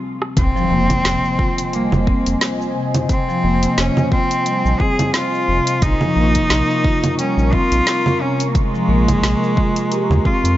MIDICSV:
0, 0, Header, 1, 7, 480
1, 0, Start_track
1, 0, Key_signature, -4, "minor"
1, 0, Tempo, 681818
1, 259, Time_signature, 4, 2, 24, 8
1, 7444, End_track
2, 0, Start_track
2, 0, Title_t, "Analog synth pad"
2, 0, Program_c, 0, 89
2, 260, Note_on_c, 0, 65, 85
2, 260, Note_on_c, 0, 72, 72
2, 260, Note_on_c, 0, 75, 77
2, 261, Note_on_c, 0, 80, 87
2, 4071, Note_off_c, 0, 72, 0
2, 4071, Note_off_c, 0, 75, 0
2, 4072, Note_off_c, 0, 80, 0
2, 4101, Note_on_c, 0, 82, 94
2, 4103, Note_on_c, 0, 70, 75
2, 4104, Note_on_c, 0, 85, 75
2, 7444, Note_off_c, 0, 65, 0
2, 7444, Note_off_c, 0, 70, 0
2, 7444, Note_off_c, 0, 82, 0
2, 7444, Note_off_c, 0, 85, 0
2, 7444, End_track
3, 0, Start_track
3, 0, Title_t, "Cello"
3, 0, Program_c, 1, 42
3, 257, Note_on_c, 1, 60, 127
3, 1227, Note_on_c, 1, 58, 88
3, 1238, Note_off_c, 1, 60, 0
3, 1943, Note_off_c, 1, 58, 0
3, 2182, Note_on_c, 1, 60, 112
3, 2660, Note_on_c, 1, 61, 100
3, 2670, Note_off_c, 1, 60, 0
3, 2895, Note_off_c, 1, 61, 0
3, 2899, Note_on_c, 1, 60, 110
3, 3381, Note_on_c, 1, 68, 109
3, 3391, Note_off_c, 1, 60, 0
3, 3613, Note_off_c, 1, 68, 0
3, 3618, Note_on_c, 1, 65, 113
3, 4100, Note_on_c, 1, 63, 127
3, 4111, Note_off_c, 1, 65, 0
3, 5058, Note_off_c, 1, 63, 0
3, 5062, Note_on_c, 1, 61, 99
3, 5300, Note_on_c, 1, 65, 123
3, 5311, Note_off_c, 1, 61, 0
3, 5782, Note_on_c, 1, 61, 109
3, 5792, Note_off_c, 1, 65, 0
3, 5970, Note_on_c, 1, 58, 77
3, 5981, Note_off_c, 1, 61, 0
3, 6019, Note_on_c, 1, 56, 127
3, 6029, Note_off_c, 1, 58, 0
3, 7223, Note_on_c, 1, 65, 104
3, 7233, Note_off_c, 1, 56, 0
3, 7444, Note_off_c, 1, 65, 0
3, 7444, End_track
4, 0, Start_track
4, 0, Title_t, "Marimba"
4, 0, Program_c, 2, 12
4, 394, Note_on_c, 2, 53, 100
4, 489, Note_off_c, 2, 53, 0
4, 496, Note_on_c, 2, 58, 100
4, 575, Note_off_c, 2, 58, 0
4, 633, Note_on_c, 2, 48, 69
4, 693, Note_off_c, 2, 48, 0
4, 977, Note_on_c, 2, 65, 77
4, 1208, Note_off_c, 2, 65, 0
4, 1219, Note_on_c, 2, 55, 79
4, 1448, Note_off_c, 2, 55, 0
4, 1459, Note_on_c, 2, 60, 104
4, 1536, Note_off_c, 2, 60, 0
4, 1936, Note_on_c, 2, 48, 78
4, 2300, Note_off_c, 2, 48, 0
4, 2315, Note_on_c, 2, 53, 103
4, 2409, Note_off_c, 2, 53, 0
4, 2418, Note_on_c, 2, 58, 98
4, 2496, Note_off_c, 2, 58, 0
4, 2555, Note_on_c, 2, 48, 72
4, 2614, Note_off_c, 2, 48, 0
4, 2898, Note_on_c, 2, 65, 77
4, 3128, Note_off_c, 2, 65, 0
4, 3138, Note_on_c, 2, 55, 77
4, 3368, Note_off_c, 2, 55, 0
4, 3380, Note_on_c, 2, 60, 97
4, 3457, Note_off_c, 2, 60, 0
4, 3858, Note_on_c, 2, 48, 75
4, 4099, Note_off_c, 2, 48, 0
4, 4233, Note_on_c, 2, 53, 97
4, 4328, Note_off_c, 2, 53, 0
4, 4336, Note_on_c, 2, 58, 100
4, 4415, Note_off_c, 2, 58, 0
4, 4473, Note_on_c, 2, 48, 75
4, 4533, Note_off_c, 2, 48, 0
4, 4820, Note_on_c, 2, 65, 78
4, 5049, Note_off_c, 2, 65, 0
4, 5060, Note_on_c, 2, 55, 78
4, 5289, Note_off_c, 2, 55, 0
4, 5298, Note_on_c, 2, 60, 104
4, 5376, Note_off_c, 2, 60, 0
4, 5780, Note_on_c, 2, 48, 79
4, 6141, Note_off_c, 2, 48, 0
4, 6155, Note_on_c, 2, 53, 102
4, 6249, Note_off_c, 2, 53, 0
4, 6264, Note_on_c, 2, 58, 100
4, 6339, Note_off_c, 2, 58, 0
4, 6398, Note_on_c, 2, 48, 75
4, 6456, Note_off_c, 2, 48, 0
4, 6742, Note_on_c, 2, 65, 74
4, 6970, Note_off_c, 2, 65, 0
4, 6983, Note_on_c, 2, 67, 79
4, 7211, Note_off_c, 2, 67, 0
4, 7221, Note_on_c, 2, 60, 97
4, 7297, Note_off_c, 2, 60, 0
4, 7444, End_track
5, 0, Start_track
5, 0, Title_t, "Analog synth bass"
5, 0, Program_c, 3, 38
5, 260, Note_on_c, 3, 29, 104
5, 346, Note_off_c, 3, 29, 0
5, 499, Note_on_c, 3, 29, 87
5, 663, Note_off_c, 3, 29, 0
5, 739, Note_on_c, 3, 29, 95
5, 825, Note_off_c, 3, 29, 0
5, 1353, Note_on_c, 3, 29, 87
5, 1496, Note_off_c, 3, 29, 0
5, 1594, Note_on_c, 3, 29, 100
5, 1661, Note_off_c, 3, 29, 0
5, 2420, Note_on_c, 3, 29, 87
5, 2583, Note_off_c, 3, 29, 0
5, 2659, Note_on_c, 3, 29, 90
5, 2745, Note_off_c, 3, 29, 0
5, 3274, Note_on_c, 3, 34, 76
5, 3341, Note_off_c, 3, 34, 0
5, 3859, Note_on_c, 3, 29, 98
5, 3945, Note_off_c, 3, 29, 0
5, 4096, Note_on_c, 3, 34, 99
5, 4184, Note_off_c, 3, 34, 0
5, 4336, Note_on_c, 3, 34, 85
5, 4502, Note_off_c, 3, 34, 0
5, 4576, Note_on_c, 3, 34, 90
5, 4664, Note_off_c, 3, 34, 0
5, 5190, Note_on_c, 3, 34, 87
5, 5334, Note_off_c, 3, 34, 0
5, 5432, Note_on_c, 3, 34, 94
5, 5500, Note_off_c, 3, 34, 0
5, 6253, Note_on_c, 3, 34, 80
5, 6420, Note_off_c, 3, 34, 0
5, 6492, Note_on_c, 3, 34, 90
5, 6582, Note_off_c, 3, 34, 0
5, 7111, Note_on_c, 3, 39, 80
5, 7180, Note_off_c, 3, 39, 0
5, 7349, Note_on_c, 3, 41, 97
5, 7444, Note_off_c, 3, 41, 0
5, 7444, End_track
6, 0, Start_track
6, 0, Title_t, "Impact"
6, 0, Program_c, 4, 103
6, 258, Note_on_c, 4, 60, 73
6, 2179, Note_off_c, 4, 60, 0
6, 7444, End_track
7, 0, Start_track
7, 0, Title_t, "Drums"
7, 153, Note_on_c, 9, 37, 75
7, 223, Note_off_c, 9, 37, 0
7, 258, Note_on_c, 9, 42, 44
7, 259, Note_on_c, 9, 36, 113
7, 264, Note_on_c, 9, 82, 52
7, 329, Note_off_c, 9, 42, 0
7, 330, Note_off_c, 9, 36, 0
7, 334, Note_off_c, 9, 82, 0
7, 400, Note_on_c, 9, 82, 31
7, 470, Note_off_c, 9, 82, 0
7, 633, Note_on_c, 9, 42, 60
7, 633, Note_on_c, 9, 64, 78
7, 634, Note_on_c, 9, 36, 66
7, 639, Note_on_c, 9, 82, 64
7, 704, Note_off_c, 9, 36, 0
7, 704, Note_off_c, 9, 42, 0
7, 704, Note_off_c, 9, 64, 0
7, 709, Note_off_c, 9, 82, 0
7, 739, Note_on_c, 9, 38, 108
7, 739, Note_on_c, 9, 42, 44
7, 745, Note_on_c, 9, 82, 56
7, 809, Note_off_c, 9, 38, 0
7, 809, Note_off_c, 9, 42, 0
7, 815, Note_off_c, 9, 82, 0
7, 879, Note_on_c, 9, 82, 31
7, 950, Note_off_c, 9, 82, 0
7, 978, Note_on_c, 9, 36, 103
7, 1048, Note_off_c, 9, 36, 0
7, 1114, Note_on_c, 9, 42, 59
7, 1120, Note_on_c, 9, 82, 70
7, 1185, Note_off_c, 9, 42, 0
7, 1190, Note_off_c, 9, 82, 0
7, 1220, Note_on_c, 9, 42, 43
7, 1226, Note_on_c, 9, 82, 57
7, 1291, Note_off_c, 9, 42, 0
7, 1296, Note_off_c, 9, 82, 0
7, 1354, Note_on_c, 9, 64, 78
7, 1360, Note_on_c, 9, 82, 33
7, 1424, Note_off_c, 9, 64, 0
7, 1430, Note_off_c, 9, 82, 0
7, 1458, Note_on_c, 9, 36, 99
7, 1529, Note_off_c, 9, 36, 0
7, 1594, Note_on_c, 9, 42, 58
7, 1600, Note_on_c, 9, 82, 63
7, 1664, Note_off_c, 9, 42, 0
7, 1670, Note_off_c, 9, 82, 0
7, 1699, Note_on_c, 9, 38, 105
7, 1699, Note_on_c, 9, 42, 44
7, 1704, Note_on_c, 9, 82, 55
7, 1769, Note_off_c, 9, 38, 0
7, 1769, Note_off_c, 9, 42, 0
7, 1775, Note_off_c, 9, 82, 0
7, 1841, Note_on_c, 9, 82, 33
7, 1911, Note_off_c, 9, 82, 0
7, 2073, Note_on_c, 9, 42, 58
7, 2073, Note_on_c, 9, 64, 78
7, 2079, Note_on_c, 9, 82, 70
7, 2144, Note_off_c, 9, 42, 0
7, 2144, Note_off_c, 9, 64, 0
7, 2149, Note_off_c, 9, 82, 0
7, 2177, Note_on_c, 9, 42, 42
7, 2178, Note_on_c, 9, 36, 112
7, 2183, Note_on_c, 9, 82, 60
7, 2248, Note_off_c, 9, 42, 0
7, 2249, Note_off_c, 9, 36, 0
7, 2253, Note_off_c, 9, 82, 0
7, 2319, Note_on_c, 9, 82, 33
7, 2390, Note_off_c, 9, 82, 0
7, 2553, Note_on_c, 9, 42, 54
7, 2559, Note_on_c, 9, 82, 71
7, 2624, Note_off_c, 9, 42, 0
7, 2630, Note_off_c, 9, 82, 0
7, 2660, Note_on_c, 9, 38, 101
7, 2660, Note_on_c, 9, 42, 42
7, 2666, Note_on_c, 9, 82, 54
7, 2730, Note_off_c, 9, 38, 0
7, 2730, Note_off_c, 9, 42, 0
7, 2736, Note_off_c, 9, 82, 0
7, 2795, Note_on_c, 9, 64, 76
7, 2801, Note_on_c, 9, 82, 35
7, 2865, Note_off_c, 9, 64, 0
7, 2871, Note_off_c, 9, 82, 0
7, 2898, Note_on_c, 9, 36, 106
7, 2969, Note_off_c, 9, 36, 0
7, 3034, Note_on_c, 9, 42, 55
7, 3040, Note_on_c, 9, 82, 69
7, 3105, Note_off_c, 9, 42, 0
7, 3110, Note_off_c, 9, 82, 0
7, 3139, Note_on_c, 9, 42, 45
7, 3145, Note_on_c, 9, 82, 58
7, 3210, Note_off_c, 9, 42, 0
7, 3216, Note_off_c, 9, 82, 0
7, 3281, Note_on_c, 9, 82, 36
7, 3351, Note_off_c, 9, 82, 0
7, 3378, Note_on_c, 9, 36, 92
7, 3449, Note_off_c, 9, 36, 0
7, 3514, Note_on_c, 9, 42, 53
7, 3514, Note_on_c, 9, 64, 76
7, 3520, Note_on_c, 9, 82, 69
7, 3585, Note_off_c, 9, 42, 0
7, 3585, Note_off_c, 9, 64, 0
7, 3590, Note_off_c, 9, 82, 0
7, 3618, Note_on_c, 9, 38, 99
7, 3618, Note_on_c, 9, 42, 43
7, 3623, Note_on_c, 9, 82, 57
7, 3688, Note_off_c, 9, 38, 0
7, 3688, Note_off_c, 9, 42, 0
7, 3694, Note_off_c, 9, 82, 0
7, 3760, Note_on_c, 9, 82, 30
7, 3830, Note_off_c, 9, 82, 0
7, 3991, Note_on_c, 9, 42, 60
7, 3997, Note_on_c, 9, 82, 72
7, 4062, Note_off_c, 9, 42, 0
7, 4068, Note_off_c, 9, 82, 0
7, 4097, Note_on_c, 9, 42, 41
7, 4098, Note_on_c, 9, 36, 127
7, 4103, Note_on_c, 9, 82, 58
7, 4168, Note_off_c, 9, 42, 0
7, 4169, Note_off_c, 9, 36, 0
7, 4173, Note_off_c, 9, 82, 0
7, 4230, Note_on_c, 9, 64, 76
7, 4236, Note_on_c, 9, 82, 36
7, 4300, Note_off_c, 9, 64, 0
7, 4306, Note_off_c, 9, 82, 0
7, 4470, Note_on_c, 9, 42, 55
7, 4474, Note_on_c, 9, 36, 67
7, 4475, Note_on_c, 9, 82, 68
7, 4540, Note_off_c, 9, 42, 0
7, 4544, Note_off_c, 9, 36, 0
7, 4546, Note_off_c, 9, 82, 0
7, 4577, Note_on_c, 9, 38, 106
7, 4577, Note_on_c, 9, 42, 45
7, 4583, Note_on_c, 9, 82, 58
7, 4648, Note_off_c, 9, 38, 0
7, 4648, Note_off_c, 9, 42, 0
7, 4653, Note_off_c, 9, 82, 0
7, 4719, Note_on_c, 9, 82, 34
7, 4790, Note_off_c, 9, 82, 0
7, 4818, Note_on_c, 9, 36, 114
7, 4889, Note_off_c, 9, 36, 0
7, 4953, Note_on_c, 9, 42, 57
7, 4953, Note_on_c, 9, 64, 76
7, 4959, Note_on_c, 9, 82, 74
7, 5024, Note_off_c, 9, 42, 0
7, 5024, Note_off_c, 9, 64, 0
7, 5030, Note_off_c, 9, 82, 0
7, 5060, Note_on_c, 9, 42, 43
7, 5065, Note_on_c, 9, 82, 60
7, 5130, Note_off_c, 9, 42, 0
7, 5136, Note_off_c, 9, 82, 0
7, 5200, Note_on_c, 9, 82, 36
7, 5271, Note_off_c, 9, 82, 0
7, 5298, Note_on_c, 9, 36, 100
7, 5369, Note_off_c, 9, 36, 0
7, 5434, Note_on_c, 9, 42, 56
7, 5440, Note_on_c, 9, 82, 72
7, 5504, Note_off_c, 9, 42, 0
7, 5510, Note_off_c, 9, 82, 0
7, 5539, Note_on_c, 9, 38, 107
7, 5539, Note_on_c, 9, 42, 44
7, 5545, Note_on_c, 9, 82, 59
7, 5610, Note_off_c, 9, 38, 0
7, 5610, Note_off_c, 9, 42, 0
7, 5615, Note_off_c, 9, 82, 0
7, 5674, Note_on_c, 9, 64, 72
7, 5680, Note_on_c, 9, 82, 32
7, 5745, Note_off_c, 9, 64, 0
7, 5750, Note_off_c, 9, 82, 0
7, 5914, Note_on_c, 9, 42, 53
7, 5920, Note_on_c, 9, 82, 78
7, 5985, Note_off_c, 9, 42, 0
7, 5990, Note_off_c, 9, 82, 0
7, 6019, Note_on_c, 9, 36, 125
7, 6020, Note_on_c, 9, 42, 40
7, 6026, Note_on_c, 9, 82, 57
7, 6089, Note_off_c, 9, 36, 0
7, 6090, Note_off_c, 9, 42, 0
7, 6096, Note_off_c, 9, 82, 0
7, 6159, Note_on_c, 9, 82, 33
7, 6229, Note_off_c, 9, 82, 0
7, 6394, Note_on_c, 9, 36, 65
7, 6395, Note_on_c, 9, 42, 53
7, 6395, Note_on_c, 9, 64, 78
7, 6401, Note_on_c, 9, 82, 70
7, 6464, Note_off_c, 9, 36, 0
7, 6466, Note_off_c, 9, 42, 0
7, 6466, Note_off_c, 9, 64, 0
7, 6471, Note_off_c, 9, 82, 0
7, 6501, Note_on_c, 9, 38, 93
7, 6501, Note_on_c, 9, 42, 44
7, 6507, Note_on_c, 9, 82, 55
7, 6572, Note_off_c, 9, 38, 0
7, 6572, Note_off_c, 9, 42, 0
7, 6578, Note_off_c, 9, 82, 0
7, 6641, Note_on_c, 9, 82, 35
7, 6712, Note_off_c, 9, 82, 0
7, 6738, Note_on_c, 9, 36, 106
7, 6808, Note_off_c, 9, 36, 0
7, 6873, Note_on_c, 9, 42, 57
7, 6879, Note_on_c, 9, 82, 66
7, 6944, Note_off_c, 9, 42, 0
7, 6950, Note_off_c, 9, 82, 0
7, 6981, Note_on_c, 9, 42, 41
7, 6986, Note_on_c, 9, 82, 59
7, 7051, Note_off_c, 9, 42, 0
7, 7057, Note_off_c, 9, 82, 0
7, 7116, Note_on_c, 9, 64, 80
7, 7122, Note_on_c, 9, 82, 34
7, 7186, Note_off_c, 9, 64, 0
7, 7192, Note_off_c, 9, 82, 0
7, 7217, Note_on_c, 9, 36, 105
7, 7288, Note_off_c, 9, 36, 0
7, 7356, Note_on_c, 9, 42, 53
7, 7362, Note_on_c, 9, 82, 72
7, 7426, Note_off_c, 9, 42, 0
7, 7432, Note_off_c, 9, 82, 0
7, 7444, End_track
0, 0, End_of_file